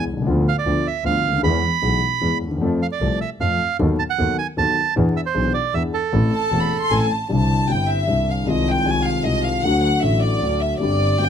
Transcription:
0.07 C2
0.13 B1
0.17 C2
0.22 C#2
0.26 D2 D3 F3 B3 F4
0.48 F5
0.58 D5
0.65 D2 D3 F3 B3 F4
0.87 E5
1.04 D2 D3 F3 B3 F4 F5
1.24 D2
1.28 C#2
1.33 D2
1.38 D#2
1.43 E2 E3 G#3 B3 G#4 B5
1.82 B1 B2 E3 G#3 B3 G#4
2.21 E2 E3 G#3 B3 G#4
2.42 D#2
2.46 D2
2.51 D#2
2.57 E2
2.61 F2 F3 A3 C4 A4
2.83 F5
2.92 D5
3.01 C2 C3 F3 A3 C4 A4
3.21 E5
3.40 F2 F3 A3 C4 A4 F5
3.79 D#2 D#3 F#3 B3 D#4 A4
3.99 A5
4.10 F#5
4.18 D#2 D#3 F#3 B3 D#4 A4
4.38 G#5
4.57 D#2 D#3 F#3 B3 D#4 A4 A5
4.96 E2 E3 B3 D4 G#4
5.17 E5
5.26 C5
5.34 B1 B2 E3 B3 D4 G#4
5.54 D5
5.74 E2 E3 B3 D4 G#4 E5
5.94 A4
6.13 A1 A2 E3 A3 C4 A4
6.32 A5
6.51 E1 E2 E3 A3 C4 A4
6.61 B5
6.81 C6
6.90 A1 A2 E3 A3 C4 A4 G#5
7.00 A5
7.10 A5
7.28 C2 C3 D3 G3 C4 E4 A5
7.68 G1 G2 D3 G3 C4 G5
7.72 E4
7.90 E5
8.06 C2 C3 D3 G3 C4 E4
8.29 F5
8.45 C2 C3 D#3 G#3 C4 D#5
8.49 F4
8.68 G5
8.84 C2 C3 D#3 G#3 C4 G#5
8.88 F4
9.06 F5
9.23 C2 C3 D#3 G#3 C4 F4 D#5
9.44 F5
9.62 D2 D3 F#3 A3 F#4 F#5
9.83 F#5
10.01 A1 A2 D3 F#3 A3 F#4 E5
10.22 D5
10.39 D2 D3 F#3 A3 F#4
10.60 E5
10.79 G1 G2 D3 G3 C4 D5
10.83 G4
11.17 G1 G2 D3 G3 B3 G4 G5

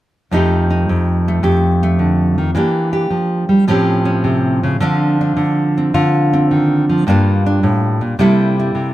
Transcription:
0.31 F2 F3 A3 D#4 G4
0.70 D#4
0.89 F2
1.28 A3
1.43 F2 G4
1.83 A3
1.99 D3
2.38 D#3
2.55 E3 A#3 D4 G4
2.93 G4
3.10 F3
3.49 G3
3.68 A2 F3 C4 C#4 G4
4.05 C#4
4.24 C3
4.63 C#3
4.80 D3 F3 C4 D4 F4
5.21 D4
5.37 D3
5.77 C4
5.94 D3 F4
6.33 C4
6.51 D#3
6.89 F3
7.07 G2 G3 A#3 D4 F4
7.46 D4
7.63 A2
8.01 A#2
8.19 C3 G3 A#3 E4 A4
8.59 E4
8.75 C3

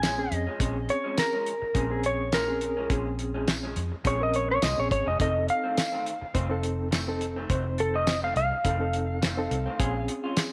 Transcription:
Already playing: A#1 G#5
0.02 A#2 F3 G#3 C#4, snare, closed hi-hat, tambourine
0.18 C4 C#4 G#4, muted clean electric guitar stroke
0.31 F2 D#5, muted clean electric guitar stroke, closed hi-hat
0.47 F3 G#3 C#4
0.60 A#1 A#2 F3 G#3 C4 C#4 G#4, kick, closed hi-hat
0.76 muted clean electric guitar stroke
0.89 C#5, muted clean electric guitar stroke, closed hi-hat
1.04 F3 G#3 C#4
1.18 A#4, muted clean electric guitar stroke, snare, closed hi-hat, tambourine
1.33 F3 G#3 C#4
1.46 closed hi-hat
1.62 muted clean electric guitar stroke, muted fingered electric bass stroke
1.74 A#1 A#2 F3 G#3 C4 C#4 G#4, kick, closed hi-hat
1.90 C4 C#4 G#4, muted clean electric guitar stroke
2.03 C#5, muted clean electric guitar stroke, closed hi-hat
2.32 A#2 F3 G#3 C#4 A#4, snare, closed hi-hat, tambourine
2.47 C4 C#4 G#4, muted clean electric guitar stroke
2.61 muted clean electric guitar stroke, closed hi-hat
2.77 F3 G#3 C#4
2.90 A#1 A#2 F3 G#3 C4 C#4 G#4, kick, closed hi-hat
3.06 muted clean electric guitar stroke
3.19 muted clean electric guitar stroke, closed hi-hat
3.34 F3 G#3 C#4
3.48 muted clean electric guitar stroke, snare, closed hi-hat, tambourine
3.63 F3 G#3 C#4
3.76 F2, closed hi-hat
3.92 muted clean electric guitar stroke, muted fingered electric bass stroke
4.04 A#1 A#2 F3 G#3 C4 C#4 G#4 C#5, kick, closed hi-hat
4.20 C4 C#4 A#4 D#5, muted clean electric guitar stroke
4.33 C#5, muted clean electric guitar stroke, closed hi-hat
4.51 C#5
4.62 C2 A#2 F3 G#3 C#4 D#5, snare, closed hi-hat, tambourine
4.78 A#1 C4 C#4 G#4 C#5, muted clean electric guitar stroke
4.90 G#1 C#5, muted clean electric guitar stroke, kick, closed hi-hat
5.06 F1 F3 G#3 C#4 D#5
5.19 F1 F2 D#3 A3 C4 D#4 A4 D#5, kick, closed hi-hat
5.35 muted clean electric guitar stroke
5.48 F5, muted clean electric guitar stroke, closed hi-hat
5.64 D#3 A3 C4
5.77 muted clean electric guitar stroke, snare, closed hi-hat, tambourine
5.92 D#3 A3 C4
6.06 closed hi-hat
6.21 muted clean electric guitar stroke, muted fingered electric bass stroke
6.34 F1 F2 D#3 A3 C4 D#4 C5, kick, closed hi-hat
6.50 C4 D#4 A4, muted clean electric guitar stroke
6.63 muted clean electric guitar stroke, closed hi-hat
6.91 F2 D#3 A3 C4, snare, closed hi-hat, tambourine
7.07 C4 D#4 A4, muted clean electric guitar stroke
7.21 muted clean electric guitar stroke, closed hi-hat
7.36 D#3 A3 C4
7.49 F1 F2 D#3 A3 C4 D#4 C5, kick, closed hi-hat
7.65 muted clean electric guitar stroke
7.78 A4, muted clean electric guitar stroke, closed hi-hat
7.94 D#3 A3 C4 D#5
8.07 muted clean electric guitar stroke, snare, closed hi-hat, tambourine
8.22 D#3 A3 C4 F5
8.36 C2 F5, closed hi-hat
8.51 muted clean electric guitar stroke, muted fingered electric bass stroke
8.64 F1 F2 D#3 A3 C4 D#4 A4, kick, closed hi-hat
8.80 C4 D#4 A4, muted clean electric guitar stroke
8.93 muted clean electric guitar stroke, closed hi-hat
9.22 F2 D#3 A3 C4, snare, closed hi-hat, tambourine
9.37 C4 D#4 A4, muted clean electric guitar stroke
9.51 C2, muted clean electric guitar stroke, closed hi-hat
9.66 D#3 A3 C4
9.79 A#1 A#2 G#3 C4 C#4 F4 G#4, kick, closed hi-hat
9.95 muted clean electric guitar stroke
10.08 muted clean electric guitar stroke, closed hi-hat
10.24 G#3 C#4 F4
10.37 muted clean electric guitar stroke, snare, closed hi-hat, tambourine

